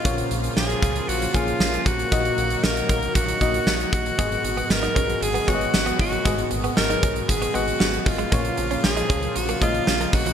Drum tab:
HH |xxxx-xxxxxxx-xxx|xxxx-xxxxxxx-xxx|xxxx-xxxxxxx-xox|xxxx-xxxxxxx-xox|
SD |----o-------o---|----o-------o---|----o-------o---|----o-------o---|
BD |o-----o---o---o-|o-----o-o-o---o-|o-----o---o---o-|o-----o-o-----o-|

HH |xxxx-xxxxxxx-xox|
SD |----o-------o---|
BD |o-----o---o---o-|